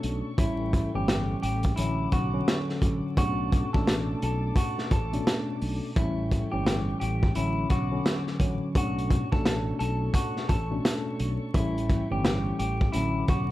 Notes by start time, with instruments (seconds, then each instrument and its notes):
Already playing: tine electric piano B2 A3 C#4 D4, clean electric guitar A4, string section A4 C#5 C#6
0.03 fretless electric bass B1, closed hi-hat
0.37 fretless electric bass A1, tine electric piano A2 E3 G3 C#4, clean electric guitar E4, string section G5, kick, closed hi-hat
0.73 kick, closed hi-hat
0.94 fretless electric bass G1, tine electric piano A2 E3 G3 C#4, clean electric guitar G4
1.08 snare, closed hi-hat
1.43 fretless electric bass A1, clean electric guitar G4, closed hi-hat
1.63 kick, closed hi-hat
1.76 fretless electric bass A1, tine electric piano D3 F#3 C#4, clean electric guitar E4, string section A4 F#5 D6, closed hi-hat
2.12 fretless electric bass B1, clean electric guitar F#4, kick, closed hi-hat
2.33 tine electric piano D3 F#3 C#4
2.48 snare, closed hi-hat
2.69 snare
2.81 fretless electric bass A1, tine electric piano D3 F#3 C#4, kick, closed hi-hat
3.17 fretless electric bass B1, tine electric piano B2 A3 C#4 D4, clean electric guitar F#4, string section A5 D6, kick, closed hi-hat
3.52 kick, closed hi-hat
3.73 fretless electric bass A1, tine electric piano B2 A3 C#4 D4, clean electric guitar A4, kick
3.87 snare, closed hi-hat
4.22 fretless electric bass B1, clean electric guitar A4, closed hi-hat
4.56 clean electric guitar F#4, kick, closed hi-hat
4.79 snare
4.91 fretless electric bass A1, clean electric guitar A4, kick, closed hi-hat
5.13 tine electric piano B2 A3 C#4 D4, closed hi-hat
5.27 snare, closed hi-hat
5.61 fretless electric bass B1, open hi-hat
5.95 fretless electric bass A1, tine electric piano A2 E3 G3 C#4, clean electric guitar E4, string section A4 G5 C#6, kick, closed hi-hat
6.32 kick, closed hi-hat
6.52 fretless electric bass G1, tine electric piano A2 E3 G3 C#4, clean electric guitar G4
6.67 snare, closed hi-hat
7.00 fretless electric bass A1, clean electric guitar G4, closed hi-hat
7.23 kick
7.34 fretless electric bass A1, tine electric piano D3 F#3 C#4, string section C#4 F#5 D6, clean electric guitar E4, closed hi-hat
7.70 fretless electric bass B1, clean electric guitar F#4, kick, closed hi-hat
7.91 tine electric piano D3 F#3 C#4
8.06 snare, closed hi-hat
8.27 snare
8.40 fretless electric bass A1, tine electric piano D3 F#3 C#4, kick, closed hi-hat
8.75 fretless electric bass B1, tine electric piano B2 A3 C#4 D4, clean electric guitar F#4, string section A4 C#5 C#6, kick, closed hi-hat
8.98 closed hi-hat
9.10 kick, closed hi-hat
9.31 fretless electric bass A1, tine electric piano B2 A3 C#4 D4, clean electric guitar A4, kick
9.45 snare, closed hi-hat
9.79 fretless electric bass B1, clean electric guitar A4, closed hi-hat
10.14 clean electric guitar F#4, kick, closed hi-hat
10.37 snare
10.49 fretless electric bass A1, clean electric guitar A4, kick, closed hi-hat
10.71 tine electric piano B2 A3 C#4 D4
10.85 snare, closed hi-hat
11.20 fretless electric bass B1, closed hi-hat
11.53 fretless electric bass A1, tine electric piano A2 E3 G3 C#4, clean electric guitar E4, string section G5, kick, closed hi-hat
11.78 closed hi-hat
11.90 kick, closed hi-hat
12.10 fretless electric bass G1, tine electric piano A2 E3 G3 C#4, clean electric guitar G4
12.25 snare, closed hi-hat
12.59 fretless electric bass A1, clean electric guitar G4, closed hi-hat
12.81 kick
12.92 fretless electric bass A1, tine electric piano D3 F#3 C#4, clean electric guitar E4, string section A4 F#5 D6, closed hi-hat
13.28 fretless electric bass B1, clean electric guitar F#4, kick, closed hi-hat